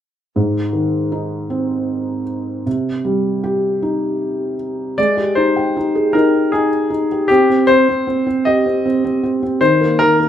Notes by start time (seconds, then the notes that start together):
0.36 G#2
0.73 D#3
1.12 D#4
1.50 C4
2.66 C3
3.05 G3
3.44 G4
3.82 D#4
4.98 G#3 D5
5.17 G4
5.35 D#4 C5
5.57 G5
5.77 D#4
5.95 G#4
6.13 D#4 A#4
6.52 D#4 G#4
6.90 D#4
7.12 G4
7.28 C4 G4
7.50 C4
7.67 C4 C5
7.89 C4
8.07 C4
8.27 C4
8.45 G4 D#5
8.66 C4
8.86 C4
9.05 C4
9.23 C4
9.43 C4
9.61 D#3 C5
9.81 A#3
9.99 D#3 A#4
10.20 A#3